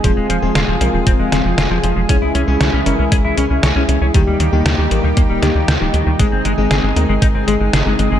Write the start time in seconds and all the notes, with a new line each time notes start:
Already playing: G#4
0.04 F1 C3 F3 G#3 C4 F4 G#4, kick, closed hi-hat
0.17 F1 G#3
0.29 F1 F3, closed hi-hat
0.42 F1 F3 G#3 C4 F4 G#4
0.55 F1 F4, snare, closed hi-hat
0.68 F1 F3
0.81 C2 F3 G#3 C4 F4 A#4, closed hi-hat
0.94 F1 F3
1.07 F1 C4, kick, closed hi-hat
1.19 F1 G#3
1.32 F1 F3 G#3 C4 F4 G#4, snare, closed hi-hat
1.45 F1 F3
1.58 F1 F4, snare, closed hi-hat
1.71 F1 F3 G#3 C4 F4 G#4
1.83 F1 F3, closed hi-hat
1.96 F1 F3
2.09 C#2 C#3 E3 G#3 C#4 E4 G#4, kick, closed hi-hat
2.22 C#2 E4
2.35 C#2 C#4, closed hi-hat
2.48 C#2 G#3 C#4 E4 G#4
2.60 C#2 C#5, snare, closed hi-hat
2.73 C#2 C#4
2.86 G#1 G#3 C#4 E4 A#4, closed hi-hat
2.99 C#2 C#4
3.12 C#2 G#4, kick, closed hi-hat
3.25 C#2 E4
3.37 C#2 G#3 C#4 E4 G#4, closed hi-hat
3.50 C#2 C#4
3.63 C#2 C#5, snare, closed hi-hat
3.76 C#2 G#3 C#4 E4 G#4
3.89 C#2 C#4, closed hi-hat
4.01 C#2 C#4
4.14 D#2 A#2 D#3 G3 A#3 D#4 G4, kick, closed hi-hat
4.27 D#2 G3
4.40 D#2 D#3, closed hi-hat
4.53 D#2 D#3 G3 A#3 D#4 G4
4.66 D#2 D#4, snare, closed hi-hat
4.78 D#2 D#3
4.91 A#1 D#3 G3 A#3 D#4 A#4, closed hi-hat
5.04 D#2 D#3
5.17 D#2 A#3, kick, closed hi-hat
5.30 D#1 G3
5.42 D#2 D#3 G3 A#3 D#4 G4, snare, closed hi-hat
5.55 D#2 D#3
5.68 D#2 D#4, snare, closed hi-hat
5.81 D#1 D#3 G3 A#3 D#4 G4
5.94 D#2 D#3, closed hi-hat
6.06 D#2 D#3
6.19 G#1 C3 G#3 C4 D#4 G#4, kick, closed hi-hat
6.32 G#1 C4
6.45 G#1 G#3, closed hi-hat
6.58 G#1 G#3 C4 D#4 G#4
6.71 G#1 G#4, snare, closed hi-hat
6.83 G#1 G#3
6.96 D#2 G#3 C4 D#4 A#4, closed hi-hat
7.09 G#1 G#3
7.22 G#1 D#4, kick, closed hi-hat
7.35 G#1 C4
7.48 G#1 G#3 C4 D#4 G#4, closed hi-hat
7.61 G#1 G#3
7.73 G#1 G#4, snare, closed hi-hat
7.86 G#1 G#3 C4 D#4 G#4
7.99 G#1 G#3, closed hi-hat
8.12 G#1 G#3